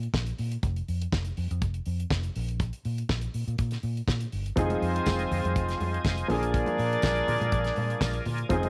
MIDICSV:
0, 0, Header, 1, 6, 480
1, 0, Start_track
1, 0, Tempo, 492207
1, 612, Time_signature, 4, 2, 24, 8
1, 8476, End_track
2, 0, Start_track
2, 0, Title_t, "Tonewheel organ"
2, 0, Program_c, 0, 16
2, 4460, Note_on_c, 0, 72, 64
2, 4462, Note_on_c, 0, 80, 81
2, 4463, Note_on_c, 0, 65, 67
2, 4463, Note_on_c, 0, 75, 67
2, 6121, Note_off_c, 0, 72, 0
2, 6122, Note_off_c, 0, 75, 0
2, 6143, Note_on_c, 0, 74, 59
2, 6144, Note_on_c, 0, 70, 55
2, 8275, Note_off_c, 0, 70, 0
2, 8275, Note_off_c, 0, 74, 0
2, 8296, Note_on_c, 0, 72, 69
2, 8297, Note_on_c, 0, 75, 66
2, 8476, Note_off_c, 0, 65, 0
2, 8476, Note_off_c, 0, 72, 0
2, 8476, Note_off_c, 0, 75, 0
2, 8476, Note_off_c, 0, 80, 0
2, 8476, End_track
3, 0, Start_track
3, 0, Title_t, "Horn section"
3, 0, Program_c, 1, 61
3, 4458, Note_on_c, 1, 60, 80
3, 4458, Note_on_c, 1, 65, 64
3, 4458, Note_on_c, 1, 72, 87
3, 4459, Note_on_c, 1, 56, 68
3, 5868, Note_off_c, 1, 56, 0
3, 5868, Note_off_c, 1, 60, 0
3, 5868, Note_off_c, 1, 65, 0
3, 5868, Note_off_c, 1, 72, 0
3, 6137, Note_on_c, 1, 62, 94
3, 6137, Note_on_c, 1, 74, 102
3, 6138, Note_on_c, 1, 68, 89
3, 6139, Note_on_c, 1, 58, 90
3, 8015, Note_off_c, 1, 62, 0
3, 8015, Note_off_c, 1, 74, 0
3, 8016, Note_off_c, 1, 58, 0
3, 8016, Note_off_c, 1, 68, 0
3, 8292, Note_on_c, 1, 60, 63
3, 8292, Note_on_c, 1, 68, 64
3, 8293, Note_on_c, 1, 63, 78
3, 8293, Note_on_c, 1, 75, 85
3, 8476, Note_off_c, 1, 60, 0
3, 8476, Note_off_c, 1, 63, 0
3, 8476, Note_off_c, 1, 68, 0
3, 8476, Note_off_c, 1, 75, 0
3, 8476, End_track
4, 0, Start_track
4, 0, Title_t, "Grand piano"
4, 0, Program_c, 2, 0
4, 4445, Note_on_c, 2, 53, 78
4, 4454, Note_on_c, 2, 60, 62
4, 4464, Note_on_c, 2, 63, 74
4, 4474, Note_on_c, 2, 68, 79
4, 4621, Control_c, 2, 64, 127
4, 6096, Note_off_c, 2, 53, 0
4, 6101, Note_off_c, 2, 60, 0
4, 6106, Note_off_c, 2, 63, 0
4, 6111, Note_off_c, 2, 68, 0
4, 6126, Note_on_c, 2, 53, 73
4, 6136, Note_on_c, 2, 58, 58
4, 6145, Note_on_c, 2, 62, 60
4, 6146, Control_c, 2, 64, 0
4, 6156, Note_on_c, 2, 68, 79
4, 6344, Control_c, 2, 64, 127
4, 8010, Note_off_c, 2, 53, 0
4, 8015, Note_off_c, 2, 58, 0
4, 8019, Note_off_c, 2, 62, 0
4, 8025, Note_off_c, 2, 68, 0
4, 8282, Note_on_c, 2, 53, 77
4, 8292, Note_on_c, 2, 60, 70
4, 8302, Note_on_c, 2, 63, 67
4, 8305, Control_c, 2, 64, 0
4, 8312, Note_on_c, 2, 68, 81
4, 8476, Note_off_c, 2, 53, 0
4, 8476, Note_off_c, 2, 60, 0
4, 8476, Note_off_c, 2, 63, 0
4, 8476, Note_off_c, 2, 68, 0
4, 8476, End_track
5, 0, Start_track
5, 0, Title_t, "Fingered electric bass"
5, 0, Program_c, 3, 33
5, 137, Note_on_c, 3, 34, 109
5, 299, Note_off_c, 3, 34, 0
5, 382, Note_on_c, 3, 46, 91
5, 543, Note_off_c, 3, 46, 0
5, 617, Note_on_c, 3, 29, 110
5, 779, Note_off_c, 3, 29, 0
5, 863, Note_on_c, 3, 41, 90
5, 1023, Note_off_c, 3, 41, 0
5, 1101, Note_on_c, 3, 29, 102
5, 1262, Note_off_c, 3, 29, 0
5, 1342, Note_on_c, 3, 41, 92
5, 1426, Note_off_c, 3, 41, 0
5, 1472, Note_on_c, 3, 41, 91
5, 1581, Note_on_c, 3, 29, 94
5, 1595, Note_off_c, 3, 41, 0
5, 1742, Note_off_c, 3, 29, 0
5, 1820, Note_on_c, 3, 41, 97
5, 1982, Note_off_c, 3, 41, 0
5, 2057, Note_on_c, 3, 29, 105
5, 2219, Note_off_c, 3, 29, 0
5, 2305, Note_on_c, 3, 34, 100
5, 2628, Note_off_c, 3, 34, 0
5, 2783, Note_on_c, 3, 46, 93
5, 2944, Note_off_c, 3, 46, 0
5, 3021, Note_on_c, 3, 34, 96
5, 3182, Note_off_c, 3, 34, 0
5, 3263, Note_on_c, 3, 46, 76
5, 3347, Note_off_c, 3, 46, 0
5, 3389, Note_on_c, 3, 46, 88
5, 3464, Note_off_c, 3, 46, 0
5, 3502, Note_on_c, 3, 46, 93
5, 3663, Note_off_c, 3, 46, 0
5, 3739, Note_on_c, 3, 46, 94
5, 3901, Note_off_c, 3, 46, 0
5, 3977, Note_on_c, 3, 46, 93
5, 4140, Note_off_c, 3, 46, 0
5, 4221, Note_on_c, 3, 31, 83
5, 4383, Note_off_c, 3, 31, 0
5, 4459, Note_on_c, 3, 29, 101
5, 4621, Note_off_c, 3, 29, 0
5, 4700, Note_on_c, 3, 41, 94
5, 4862, Note_off_c, 3, 41, 0
5, 4943, Note_on_c, 3, 29, 99
5, 5104, Note_off_c, 3, 29, 0
5, 5184, Note_on_c, 3, 41, 99
5, 5267, Note_off_c, 3, 41, 0
5, 5311, Note_on_c, 3, 41, 87
5, 5426, Note_on_c, 3, 29, 107
5, 5440, Note_off_c, 3, 41, 0
5, 5586, Note_off_c, 3, 29, 0
5, 5661, Note_on_c, 3, 41, 100
5, 5822, Note_off_c, 3, 41, 0
5, 5899, Note_on_c, 3, 29, 87
5, 6061, Note_off_c, 3, 29, 0
5, 6140, Note_on_c, 3, 34, 89
5, 6464, Note_off_c, 3, 34, 0
5, 6621, Note_on_c, 3, 46, 106
5, 6782, Note_off_c, 3, 46, 0
5, 6863, Note_on_c, 3, 34, 100
5, 7023, Note_off_c, 3, 34, 0
5, 7100, Note_on_c, 3, 46, 98
5, 7184, Note_off_c, 3, 46, 0
5, 7225, Note_on_c, 3, 46, 91
5, 7300, Note_off_c, 3, 46, 0
5, 7339, Note_on_c, 3, 34, 99
5, 7500, Note_off_c, 3, 34, 0
5, 7578, Note_on_c, 3, 46, 90
5, 7739, Note_off_c, 3, 46, 0
5, 7814, Note_on_c, 3, 34, 95
5, 7977, Note_off_c, 3, 34, 0
5, 8057, Note_on_c, 3, 46, 94
5, 8219, Note_off_c, 3, 46, 0
5, 8294, Note_on_c, 3, 29, 101
5, 8456, Note_off_c, 3, 29, 0
5, 8476, End_track
6, 0, Start_track
6, 0, Title_t, "Drums"
6, 29, Note_on_c, 9, 42, 40
6, 127, Note_off_c, 9, 42, 0
6, 133, Note_on_c, 9, 36, 120
6, 140, Note_on_c, 9, 38, 116
6, 230, Note_off_c, 9, 36, 0
6, 237, Note_off_c, 9, 38, 0
6, 258, Note_on_c, 9, 42, 46
6, 356, Note_off_c, 9, 42, 0
6, 375, Note_on_c, 9, 46, 76
6, 472, Note_off_c, 9, 46, 0
6, 503, Note_on_c, 9, 42, 51
6, 600, Note_off_c, 9, 42, 0
6, 614, Note_on_c, 9, 42, 66
6, 615, Note_on_c, 9, 36, 120
6, 711, Note_off_c, 9, 42, 0
6, 712, Note_off_c, 9, 36, 0
6, 745, Note_on_c, 9, 42, 38
6, 843, Note_off_c, 9, 42, 0
6, 862, Note_on_c, 9, 46, 54
6, 959, Note_off_c, 9, 46, 0
6, 990, Note_on_c, 9, 42, 61
6, 1088, Note_off_c, 9, 42, 0
6, 1097, Note_on_c, 9, 36, 116
6, 1101, Note_on_c, 9, 38, 123
6, 1194, Note_off_c, 9, 36, 0
6, 1199, Note_off_c, 9, 38, 0
6, 1215, Note_on_c, 9, 42, 46
6, 1313, Note_off_c, 9, 42, 0
6, 1337, Note_on_c, 9, 46, 70
6, 1434, Note_off_c, 9, 46, 0
6, 1471, Note_on_c, 9, 42, 42
6, 1569, Note_off_c, 9, 42, 0
6, 1577, Note_on_c, 9, 42, 59
6, 1578, Note_on_c, 9, 36, 106
6, 1675, Note_off_c, 9, 42, 0
6, 1676, Note_off_c, 9, 36, 0
6, 1697, Note_on_c, 9, 42, 42
6, 1795, Note_off_c, 9, 42, 0
6, 1810, Note_on_c, 9, 46, 54
6, 1907, Note_off_c, 9, 46, 0
6, 1949, Note_on_c, 9, 42, 40
6, 2047, Note_off_c, 9, 42, 0
6, 2053, Note_on_c, 9, 36, 116
6, 2059, Note_on_c, 9, 38, 112
6, 2151, Note_off_c, 9, 36, 0
6, 2157, Note_off_c, 9, 38, 0
6, 2178, Note_on_c, 9, 42, 46
6, 2275, Note_off_c, 9, 42, 0
6, 2298, Note_on_c, 9, 46, 78
6, 2395, Note_off_c, 9, 46, 0
6, 2423, Note_on_c, 9, 42, 52
6, 2521, Note_off_c, 9, 42, 0
6, 2533, Note_on_c, 9, 42, 75
6, 2534, Note_on_c, 9, 36, 127
6, 2631, Note_off_c, 9, 42, 0
6, 2632, Note_off_c, 9, 36, 0
6, 2662, Note_on_c, 9, 42, 39
6, 2760, Note_off_c, 9, 42, 0
6, 2778, Note_on_c, 9, 46, 59
6, 2876, Note_off_c, 9, 46, 0
6, 2909, Note_on_c, 9, 42, 57
6, 3006, Note_off_c, 9, 42, 0
6, 3017, Note_on_c, 9, 36, 114
6, 3019, Note_on_c, 9, 38, 127
6, 3114, Note_off_c, 9, 36, 0
6, 3116, Note_off_c, 9, 38, 0
6, 3134, Note_on_c, 9, 42, 45
6, 3232, Note_off_c, 9, 42, 0
6, 3258, Note_on_c, 9, 46, 65
6, 3356, Note_off_c, 9, 46, 0
6, 3392, Note_on_c, 9, 42, 38
6, 3489, Note_off_c, 9, 42, 0
6, 3495, Note_on_c, 9, 42, 63
6, 3499, Note_on_c, 9, 36, 98
6, 3593, Note_off_c, 9, 42, 0
6, 3596, Note_off_c, 9, 36, 0
6, 3616, Note_on_c, 9, 42, 45
6, 3628, Note_on_c, 9, 38, 37
6, 3714, Note_off_c, 9, 42, 0
6, 3726, Note_off_c, 9, 38, 0
6, 3734, Note_on_c, 9, 46, 48
6, 3831, Note_off_c, 9, 46, 0
6, 3873, Note_on_c, 9, 42, 43
6, 3971, Note_off_c, 9, 42, 0
6, 3975, Note_on_c, 9, 36, 107
6, 3982, Note_on_c, 9, 38, 108
6, 4072, Note_off_c, 9, 36, 0
6, 4080, Note_off_c, 9, 38, 0
6, 4101, Note_on_c, 9, 42, 50
6, 4198, Note_off_c, 9, 42, 0
6, 4217, Note_on_c, 9, 46, 73
6, 4314, Note_off_c, 9, 46, 0
6, 4349, Note_on_c, 9, 42, 49
6, 4447, Note_off_c, 9, 42, 0
6, 4455, Note_on_c, 9, 42, 67
6, 4457, Note_on_c, 9, 36, 121
6, 4460, Note_on_c, 9, 62, 29
6, 4460, Note_on_c, 9, 64, 64
6, 4553, Note_off_c, 9, 42, 0
6, 4554, Note_off_c, 9, 36, 0
6, 4557, Note_off_c, 9, 62, 0
6, 4557, Note_off_c, 9, 64, 0
6, 4584, Note_on_c, 9, 63, 77
6, 4585, Note_on_c, 9, 42, 41
6, 4682, Note_off_c, 9, 63, 0
6, 4683, Note_off_c, 9, 42, 0
6, 4704, Note_on_c, 9, 46, 55
6, 4802, Note_off_c, 9, 46, 0
6, 4836, Note_on_c, 9, 42, 63
6, 4932, Note_on_c, 9, 54, 100
6, 4933, Note_off_c, 9, 42, 0
6, 4940, Note_on_c, 9, 36, 118
6, 4944, Note_on_c, 9, 62, 31
6, 4944, Note_on_c, 9, 63, 76
6, 4945, Note_on_c, 9, 38, 122
6, 5030, Note_off_c, 9, 54, 0
6, 5038, Note_off_c, 9, 36, 0
6, 5042, Note_off_c, 9, 38, 0
6, 5042, Note_off_c, 9, 62, 0
6, 5042, Note_off_c, 9, 63, 0
6, 5061, Note_on_c, 9, 42, 48
6, 5159, Note_off_c, 9, 42, 0
6, 5181, Note_on_c, 9, 64, 79
6, 5185, Note_on_c, 9, 46, 69
6, 5279, Note_off_c, 9, 64, 0
6, 5283, Note_off_c, 9, 46, 0
6, 5309, Note_on_c, 9, 63, 81
6, 5315, Note_on_c, 9, 42, 41
6, 5407, Note_off_c, 9, 63, 0
6, 5413, Note_off_c, 9, 42, 0
6, 5421, Note_on_c, 9, 36, 108
6, 5421, Note_on_c, 9, 42, 64
6, 5518, Note_off_c, 9, 42, 0
6, 5519, Note_off_c, 9, 36, 0
6, 5544, Note_on_c, 9, 42, 44
6, 5556, Note_on_c, 9, 38, 37
6, 5641, Note_off_c, 9, 42, 0
6, 5653, Note_off_c, 9, 38, 0
6, 5659, Note_on_c, 9, 46, 51
6, 5665, Note_on_c, 9, 63, 81
6, 5757, Note_off_c, 9, 46, 0
6, 5762, Note_off_c, 9, 63, 0
6, 5795, Note_on_c, 9, 42, 45
6, 5893, Note_off_c, 9, 42, 0
6, 5895, Note_on_c, 9, 54, 82
6, 5896, Note_on_c, 9, 36, 116
6, 5901, Note_on_c, 9, 63, 73
6, 5907, Note_on_c, 9, 38, 112
6, 5993, Note_off_c, 9, 54, 0
6, 5994, Note_off_c, 9, 36, 0
6, 5999, Note_off_c, 9, 63, 0
6, 6004, Note_off_c, 9, 38, 0
6, 6024, Note_on_c, 9, 42, 46
6, 6121, Note_off_c, 9, 42, 0
6, 6139, Note_on_c, 9, 62, 36
6, 6139, Note_on_c, 9, 64, 68
6, 6141, Note_on_c, 9, 46, 84
6, 6236, Note_off_c, 9, 62, 0
6, 6236, Note_off_c, 9, 64, 0
6, 6239, Note_off_c, 9, 46, 0
6, 6268, Note_on_c, 9, 42, 49
6, 6366, Note_off_c, 9, 42, 0
6, 6376, Note_on_c, 9, 62, 31
6, 6376, Note_on_c, 9, 64, 57
6, 6378, Note_on_c, 9, 36, 116
6, 6380, Note_on_c, 9, 42, 71
6, 6474, Note_off_c, 9, 62, 0
6, 6474, Note_off_c, 9, 64, 0
6, 6475, Note_off_c, 9, 36, 0
6, 6477, Note_off_c, 9, 42, 0
6, 6498, Note_on_c, 9, 63, 84
6, 6508, Note_on_c, 9, 42, 37
6, 6596, Note_off_c, 9, 63, 0
6, 6606, Note_off_c, 9, 42, 0
6, 6615, Note_on_c, 9, 62, 33
6, 6624, Note_on_c, 9, 46, 56
6, 6713, Note_off_c, 9, 62, 0
6, 6722, Note_off_c, 9, 46, 0
6, 6757, Note_on_c, 9, 42, 57
6, 6849, Note_on_c, 9, 54, 101
6, 6854, Note_off_c, 9, 42, 0
6, 6859, Note_on_c, 9, 36, 117
6, 6859, Note_on_c, 9, 62, 38
6, 6859, Note_on_c, 9, 63, 71
6, 6865, Note_on_c, 9, 38, 112
6, 6946, Note_off_c, 9, 54, 0
6, 6956, Note_off_c, 9, 36, 0
6, 6957, Note_off_c, 9, 62, 0
6, 6957, Note_off_c, 9, 63, 0
6, 6963, Note_off_c, 9, 38, 0
6, 6979, Note_on_c, 9, 42, 45
6, 7077, Note_off_c, 9, 42, 0
6, 7097, Note_on_c, 9, 64, 81
6, 7102, Note_on_c, 9, 46, 68
6, 7194, Note_off_c, 9, 64, 0
6, 7199, Note_off_c, 9, 46, 0
6, 7229, Note_on_c, 9, 63, 85
6, 7232, Note_on_c, 9, 42, 44
6, 7326, Note_off_c, 9, 63, 0
6, 7329, Note_off_c, 9, 42, 0
6, 7333, Note_on_c, 9, 42, 65
6, 7337, Note_on_c, 9, 36, 112
6, 7431, Note_off_c, 9, 42, 0
6, 7434, Note_off_c, 9, 36, 0
6, 7455, Note_on_c, 9, 42, 44
6, 7467, Note_on_c, 9, 38, 37
6, 7552, Note_off_c, 9, 42, 0
6, 7564, Note_off_c, 9, 38, 0
6, 7568, Note_on_c, 9, 46, 53
6, 7582, Note_on_c, 9, 63, 81
6, 7665, Note_off_c, 9, 46, 0
6, 7680, Note_off_c, 9, 63, 0
6, 7706, Note_on_c, 9, 42, 38
6, 7804, Note_off_c, 9, 42, 0
6, 7810, Note_on_c, 9, 36, 118
6, 7817, Note_on_c, 9, 38, 118
6, 7818, Note_on_c, 9, 54, 77
6, 7819, Note_on_c, 9, 63, 72
6, 7908, Note_off_c, 9, 36, 0
6, 7914, Note_off_c, 9, 38, 0
6, 7916, Note_off_c, 9, 54, 0
6, 7916, Note_off_c, 9, 63, 0
6, 7933, Note_on_c, 9, 42, 49
6, 8030, Note_off_c, 9, 42, 0
6, 8050, Note_on_c, 9, 46, 75
6, 8057, Note_on_c, 9, 64, 74
6, 8147, Note_off_c, 9, 46, 0
6, 8154, Note_off_c, 9, 64, 0
6, 8175, Note_on_c, 9, 42, 53
6, 8273, Note_off_c, 9, 42, 0
6, 8289, Note_on_c, 9, 42, 69
6, 8290, Note_on_c, 9, 36, 116
6, 8292, Note_on_c, 9, 62, 29
6, 8292, Note_on_c, 9, 64, 69
6, 8386, Note_off_c, 9, 42, 0
6, 8388, Note_off_c, 9, 36, 0
6, 8389, Note_off_c, 9, 62, 0
6, 8389, Note_off_c, 9, 64, 0
6, 8417, Note_on_c, 9, 42, 42
6, 8418, Note_on_c, 9, 63, 86
6, 8476, Note_off_c, 9, 42, 0
6, 8476, Note_off_c, 9, 63, 0
6, 8476, End_track
0, 0, End_of_file